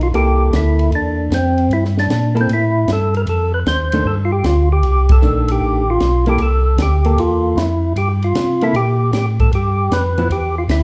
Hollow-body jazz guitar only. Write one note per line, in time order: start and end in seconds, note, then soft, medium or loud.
0.14 1.24 A#3 medium
0.14 1.24 E4 medium
0.14 1.24 A4 medium
2.35 2.47 A#3 medium
2.35 2.47 E4 medium
2.35 2.48 A4 medium
3.93 4.04 D#3 medium
3.93 4.04 A3 medium
3.93 4.05 D4 medium
5.22 5.82 D#3 medium
5.22 5.83 A3 medium
5.22 5.83 D4 medium
6.27 6.38 A#3 medium
6.27 6.39 E4 medium
6.27 6.39 A4 medium
7.05 7.54 A#3 medium
7.05 7.55 A4 medium
8.62 8.73 A#3 medium
8.62 8.73 E4 medium
8.62 8.74 A4 medium
10.18 10.29 F3 medium
10.18 10.29 B3 medium
10.18 10.30 E4 medium